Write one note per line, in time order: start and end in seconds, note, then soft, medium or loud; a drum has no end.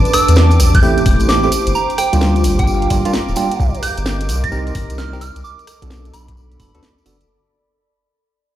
0.00 0.56 D4 medium
0.00 4.35 G4 medium
0.00 1.52 A5 medium
0.00 7.30 D6 medium
0.05 closed hi-hat soft
0.05 tambourine soft
0.13 0.29 E6 medium
0.13 cross-stick medium
0.13 open hi-hat loud
0.13 tambourine medium
0.28 0.61 E2 medium
0.28 closed hi-hat medium
0.28 tambourine soft
0.36 snare loud
0.36 tambourine soft
0.51 closed hi-hat medium
0.51 tambourine soft
0.57 1.03 A1 loud
0.57 2.38 C5 medium
0.57 cross-stick soft
0.57 open hi-hat loud
0.57 tambourine loud
0.75 1.06 G6 medium
0.75 kick loud
0.75 closed hi-hat medium
0.75 tambourine soft
0.82 1.40 A3 medium
0.82 1.40 C4 medium
0.82 1.40 E4 medium
0.82 1.40 G4 loud
0.82 tambourine medium
0.98 closed hi-hat soft
0.98 tambourine soft
1.06 1.18 E1 medium
1.06 kick loud
1.06 open hi-hat loud
1.06 tambourine medium
1.20 1.49 A1 medium
1.20 closed hi-hat medium
1.20 tambourine soft
1.29 1.44 D6 medium
1.29 snare loud
1.29 tambourine medium
1.43 1.51 A3 medium
1.43 1.51 C4 medium
1.43 1.51 E4 medium
1.43 1.51 G4 loud
1.43 tambourine soft
1.52 open hi-hat loud
1.52 tambourine medium
1.67 1.73 G1 medium
1.67 closed hi-hat medium
1.67 tambourine soft
1.75 1.90 A#5 medium
1.75 tambourine medium
1.90 closed hi-hat soft
1.90 tambourine soft
1.98 2.14 G5 loud
1.98 cross-stick medium
1.98 open hi-hat loud
1.98 tambourine medium
2.13 2.46 D2 loud
2.13 2.88 G3 medium
2.13 2.88 A#3 medium
2.13 2.88 D4 medium
2.13 2.88 F4 medium
2.13 4.28 F5 medium
2.13 closed hi-hat medium
2.13 tambourine soft
2.21 snare loud
2.21 tambourine soft
2.36 closed hi-hat medium
2.36 tambourine soft
2.44 2.88 G1 loud
2.44 4.35 A#5 medium
2.44 open hi-hat loud
2.44 tambourine medium
2.59 2.90 G5 medium
2.59 kick loud
2.59 closed hi-hat medium
2.59 tambourine soft
2.67 tambourine medium
2.82 closed hi-hat soft
2.82 tambourine soft
2.90 3.02 G1 medium
2.90 3.01 G3 medium
2.90 3.01 A#3 medium
2.90 3.01 D4 medium
2.90 3.01 F4 medium
2.90 kick loud
2.90 open hi-hat loud
2.90 tambourine medium
3.05 3.11 G3 loud
3.05 3.11 A#3 medium
3.05 3.11 D4 medium
3.05 3.11 F4 loud
3.05 closed hi-hat medium
3.05 tambourine soft
3.13 snare loud
3.13 tambourine medium
3.28 3.35 D1 medium
3.28 tambourine soft
3.36 3.47 G3 medium
3.36 3.47 A#3 medium
3.36 3.47 D4 medium
3.36 3.47 F4 loud
3.36 3.66 G5 loud
3.36 open hi-hat loud
3.36 tambourine medium
3.51 closed hi-hat medium
3.51 tambourine soft
3.60 3.71 C2 loud
3.60 5.44 A#4 medium
3.60 kick loud
3.60 tambourine soft
3.75 5.44 D#5 medium
3.75 closed hi-hat soft
3.75 tambourine soft
3.83 3.98 G6 loud
3.83 cross-stick medium
3.83 open hi-hat loud
3.83 tambourine medium
3.97 4.30 G1 loud
3.97 closed hi-hat medium
3.97 tambourine soft
4.04 5.44 C6 medium
4.04 snare loud
4.04 tambourine soft
4.20 closed hi-hat medium
4.20 tambourine soft
4.29 4.72 C2 loud
4.29 open hi-hat loud
4.29 tambourine loud
4.44 4.75 A#6 medium
4.44 kick loud
4.44 closed hi-hat medium
4.52 5.09 C4 medium
4.52 5.09 D#4 medium
4.52 5.09 G4 medium
4.52 5.09 A#4 loud
4.52 tambourine soft
4.67 closed hi-hat soft
4.67 tambourine soft
4.75 4.87 G1 medium
4.75 kick loud
4.75 open hi-hat loud
4.75 tambourine medium
4.90 5.31 C2 loud
4.90 closed hi-hat medium
4.90 tambourine soft
4.98 5.14 F6 medium
4.98 snare loud
4.98 tambourine soft
5.13 5.23 C4 medium
5.13 5.23 D#4 medium
5.13 5.23 G4 medium
5.13 5.23 A#4 loud
5.13 tambourine soft
5.21 5.37 F6 medium
5.21 open hi-hat loud
5.21 tambourine medium
5.36 5.43 C2 medium
5.36 closed hi-hat medium
5.36 tambourine soft
5.44 7.29 A4 medium
5.44 5.90 D6 medium
5.44 tambourine medium
5.59 closed hi-hat soft
5.59 tambourine soft
5.67 cross-stick medium
5.67 open hi-hat loud
5.67 tambourine medium
5.82 6.11 B1 loud
5.82 6.58 B3 medium
5.82 6.58 D4 medium
5.82 6.58 F#4 medium
5.82 6.58 A4 medium
5.82 kick medium
5.82 closed hi-hat medium
5.82 tambourine soft
5.90 snare loud
5.90 tambourine medium
6.05 7.29 B5 medium
6.05 closed hi-hat medium
6.05 tambourine soft
6.13 6.57 B1 loud
6.13 6.29 B5 medium
6.13 cross-stick soft
6.13 open hi-hat loud
6.13 tambourine loud
6.28 7.29 D5 medium
6.28 kick loud
6.28 closed hi-hat medium
6.28 tambourine soft
6.37 tambourine medium
6.52 closed hi-hat soft
6.52 tambourine soft
6.60 6.71 F#1 medium
6.60 6.70 B3 medium
6.60 6.70 D4 medium
6.60 6.70 F#4 medium
6.60 6.70 A4 medium
6.60 7.06 B5 medium
6.60 kick loud
6.60 open hi-hat loud
6.60 tambourine medium
6.75 6.81 D2 medium
6.75 6.80 B3 loud
6.75 6.80 D4 medium
6.75 6.80 F#4 medium
6.75 6.80 A4 loud
6.75 closed hi-hat medium
6.75 tambourine soft
6.83 snare loud
6.83 open hi-hat medium
6.83 tambourine medium
6.98 tambourine soft
7.06 7.25 F#1 medium
7.06 7.16 B3 medium
7.06 7.16 D4 medium
7.06 7.16 F#4 medium
7.06 7.16 A4 loud
7.06 open hi-hat loud
7.06 tambourine medium
7.21 closed hi-hat medium
7.21 tambourine soft